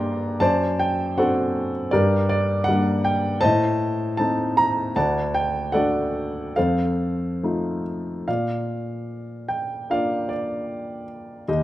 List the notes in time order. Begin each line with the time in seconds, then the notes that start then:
Already playing: G2 A#3 D4 G4 A#4 D5 G5 A#5 C6
0.40 F#2 C5 D5 A5
0.79 G5
1.17 C4 D4 F#4 A4 C5 F#5
1.91 G2 G4 A#4 D5
2.29 D5
2.64 F#5
2.68 G3 A#3 D4
3.05 G5
3.41 A2 C5 D#5 A5
4.17 A3 C4 D#4 A5
4.57 A#5
4.96 D2 D5 F#5 A5
5.34 G5
5.72 A3 D4 F#4 A4 D5 F#5
6.56 F2 A4 C5 F5
7.43 A3 D#4 F4
8.28 A#2 D5 F5
9.48 G5
9.90 A#3 D4 F4 D5 F5
10.29 D5
11.48 D#2 G4 D#5